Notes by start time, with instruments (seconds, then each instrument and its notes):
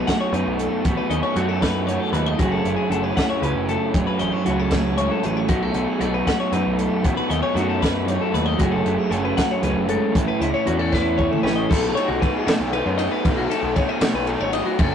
Already playing: clean electric guitar B2 F#3 A3 A4
0.07 overdriven electric guitar B2 F#3 A3 D#4, clean electric guitar C#4 F#5, kick, snare, closed hi-hat
0.20 clean electric guitar C#5
0.32 picked electric bass F#2, clean electric guitar F#2 B4, overdriven electric guitar B2 F#3 A3 D#4, closed hi-hat
0.46 picked electric bass B1
0.58 clean electric guitar A3 A4, closed hi-hat
0.85 picked electric bass A1, overdriven electric guitar B2 F#3 A3 D#4, clean electric guitar B2, kick, closed hi-hat
0.97 clean electric guitar B4
1.09 picked electric bass D#2, overdriven electric guitar F#3 A3 D#4, clean electric guitar C#4 D#5, closed hi-hat
1.23 clean electric guitar C#5
1.36 picked electric bass F#2, overdriven electric guitar B2 F#3 A3, clean electric guitar F#3 A3 F#4, closed hi-hat
1.40 overdriven electric guitar D#4
1.49 clean electric guitar A4
1.62 overdriven electric guitar B2 F#3 A3 D#4, clean electric guitar C#4 B4, kick, snare, closed hi-hat
1.86 clean electric guitar F#2 C#5, overdriven electric guitar B2 F#3 A3, closed hi-hat
1.91 overdriven electric guitar D#4
2.00 clean electric guitar A4
2.12 picked electric bass D#2, clean electric guitar A3 B4, closed hi-hat
2.26 clean electric guitar D#5
2.39 picked electric bass F#1, overdriven electric guitar F#2 C#3 F#3 A3 C#4, clean electric guitar F#2 F#3 A3 E4 F#4 G#4, kick, closed hi-hat
2.52 clean electric guitar A4
2.65 picked electric bass F#1, overdriven electric guitar F#3 A3 C#4, clean electric guitar E4, closed hi-hat
2.76 clean electric guitar G#4
2.90 picked electric bass F#1, overdriven electric guitar C#3 F#3 A3 C#4, clean electric guitar F#3 A3 A4, closed hi-hat
3.04 clean electric guitar B4
3.16 overdriven electric guitar F#2 C#3 F#3 A3 C#4, clean electric guitar E4 F#5, kick, snare, closed hi-hat
3.30 clean electric guitar C#5
3.41 picked electric bass C#2, clean electric guitar C#3 B4, overdriven electric guitar C#3 F#3 A3 C#4, closed hi-hat
3.55 picked electric bass F#1
3.69 clean electric guitar A3 A4, closed hi-hat
3.93 picked electric bass E1, overdriven electric guitar F#2 C#3 F#3 A3 C#4, clean electric guitar F#2, kick, closed hi-hat
4.07 clean electric guitar B4
4.18 picked electric bass A1, overdriven electric guitar A3 C#4, clean electric guitar C#4 D#5, closed hi-hat
4.23 overdriven electric guitar F#3
4.32 clean electric guitar E4 C#5
4.44 picked electric bass C#2, overdriven electric guitar C#3 F#3 A3, clean electric guitar F#3 A3 F#4, closed hi-hat
4.49 overdriven electric guitar C#4
4.59 clean electric guitar A4
4.70 clean electric guitar F#2 B4, overdriven electric guitar F#3 A3 C#4, kick, snare, closed hi-hat
4.75 overdriven electric guitar F#2 C#3
4.96 clean electric guitar G#2 C#5, overdriven electric guitar C#3 F#3 A3 C#4, closed hi-hat
5.11 clean electric guitar A4
5.23 picked electric bass A1, clean electric guitar A2 B4, closed hi-hat
5.37 clean electric guitar C#5
5.48 picked electric bass B1, overdriven electric guitar B2 F#3 A3 D#4, clean electric guitar B2 F#3 A3 C#4 F#4 A4, kick, closed hi-hat
5.63 clean electric guitar A4
5.74 picked electric bass B1, overdriven electric guitar F#3 A3 D#4, clean electric guitar C#4, closed hi-hat
5.88 clean electric guitar G#4
5.99 picked electric bass B1, overdriven electric guitar B2 F#3, clean electric guitar F#3 A3 A4, closed hi-hat
6.03 overdriven electric guitar A3 D#4
6.14 clean electric guitar B4
6.25 overdriven electric guitar A3 D#4, clean electric guitar C#4 F#5, kick, snare, closed hi-hat
6.30 overdriven electric guitar B2 F#3
6.40 clean electric guitar C#5
6.52 clean electric guitar F#2 B4, picked electric bass F#2, overdriven electric guitar B2 F#3 A3, closed hi-hat
6.56 overdriven electric guitar D#4
6.66 picked electric bass B1
6.79 clean electric guitar A3 A4, closed hi-hat
7.03 picked electric bass A1, clean electric guitar B2, overdriven electric guitar B2 F#3 A3 D#4, kick, closed hi-hat
7.17 clean electric guitar B4
7.28 picked electric bass D#2, overdriven electric guitar A3 D#4, clean electric guitar C#4 D#5, closed hi-hat
7.33 overdriven electric guitar F#3
7.42 clean electric guitar C#5
7.54 picked electric bass F#2, overdriven electric guitar B2 F#3, clean electric guitar F#3 A3 F#4, closed hi-hat
7.59 overdriven electric guitar A3 D#4
7.69 clean electric guitar A4
7.80 clean electric guitar C#4 B4, overdriven electric guitar D#4, kick, closed hi-hat
7.84 overdriven electric guitar B2 F#3 A3, snare
8.06 clean electric guitar F#2 C#5, overdriven electric guitar B2, closed hi-hat
8.10 overdriven electric guitar F#3 A3 D#4
8.21 clean electric guitar A4
8.32 picked electric bass D#2, clean electric guitar A3 B4, closed hi-hat
8.46 clean electric guitar D#5
8.57 picked electric bass F#1, clean electric guitar F#2 F#3 A3 E4 F#4 G#4, overdriven electric guitar F#2 C#3, kick, closed hi-hat
8.62 overdriven electric guitar F#3 A3 C#4
8.71 clean electric guitar A4
8.85 picked electric bass F#1, overdriven electric guitar A3 C#4, clean electric guitar E4, closed hi-hat
8.89 overdriven electric guitar F#3
8.98 clean electric guitar G#4
9.11 picked electric bass F#1, overdriven electric guitar C#3 F#3 A3 C#4, clean electric guitar F#3 A3 A4, closed hi-hat
9.25 clean electric guitar B4
9.37 overdriven electric guitar F#2 C#3 F#3 A3 C#4, clean electric guitar F#5, kick, snare, closed hi-hat
9.51 clean electric guitar C#5
9.62 picked electric bass C#2, clean electric guitar F#2 B4, overdriven electric guitar C#3 F#3 A3, closed hi-hat
9.67 overdriven electric guitar C#4
9.75 picked electric bass F#1
9.87 clean electric guitar G#2 A4, closed hi-hat
10.13 picked electric bass A1, clean electric guitar A2, overdriven electric guitar A2 E3 A3, kick, closed hi-hat
10.18 overdriven electric guitar C#4 E4
10.28 clean electric guitar B4
10.40 picked electric bass C#2, overdriven electric guitar C#4 E4, clean electric guitar E4 D#5, closed hi-hat
10.44 overdriven electric guitar A3
10.54 clean electric guitar C#5
10.65 picked electric bass E2, clean electric guitar E3 C#4 F#4, overdriven electric guitar E3 A3 C#4, closed hi-hat
10.70 overdriven electric guitar E4
10.79 clean electric guitar A4
10.92 overdriven electric guitar A3 C#4 E4, clean electric guitar E4 B4, kick, snare
10.96 overdriven electric guitar A2 E3
11.17 clean electric guitar A2 C#5, overdriven electric guitar E3 A3, kick
11.21 overdriven electric guitar C#4 E4
11.31 clean electric guitar A4, mid tom
11.43 picked electric bass A1, clean electric guitar C#4 B4, snare
11.56 clean electric guitar D#5
11.70 picked electric bass B1, overdriven electric guitar B2 F#3 A3 D#4, clean electric guitar A4, kick, crash
11.95 overdriven electric guitar A3 D#4, clean electric guitar C#5, ride
12.00 overdriven electric guitar F#3
12.08 picked electric bass B1, clean electric guitar F#4
12.22 overdriven electric guitar B2 F#3 A3 D#4, clean electric guitar B4, kick, ride
12.35 clean electric guitar G#4
12.47 picked electric bass B2, overdriven electric guitar A3 D#4, clean electric guitar A4, snare, ride
12.51 overdriven electric guitar F#3
12.60 picked electric bass B1
12.73 overdriven electric guitar B2 F#3 A3 D#4, clean electric guitar B4, ride
12.86 picked electric bass F#2
12.98 overdriven electric guitar A3 D#4, clean electric guitar D#5, ride
13.02 overdriven electric guitar F#3
13.12 clean electric guitar B4
13.25 picked electric bass B1, overdriven electric guitar B2 F#3 A3 D#4, kick, ride
13.37 clean electric guitar F#4
13.50 overdriven electric guitar F#3 A3 D#4, clean electric guitar A4, ride
13.63 picked electric bass B1
13.76 overdriven electric guitar B2 F#3 A3 D#4, clean electric guitar C#5, kick, ride
13.89 clean electric guitar D#5
14.01 picked electric bass B2, overdriven electric guitar A3 D#4, clean electric guitar C#5, snare, ride
14.05 overdriven electric guitar F#3
14.14 picked electric bass B1, clean electric guitar B4
14.27 overdriven electric guitar B2 F#3 A3, clean electric guitar A4, ride
14.31 overdriven electric guitar D#4
14.40 picked electric bass G#1, clean electric guitar C#5
14.53 overdriven electric guitar F#3 A3 D#4, clean electric guitar D#5, ride
14.66 clean electric guitar F#4
14.78 picked electric bass F#1, overdriven electric guitar F#2 C#3 F#3 A3 C#4, clean electric guitar A4, kick, ride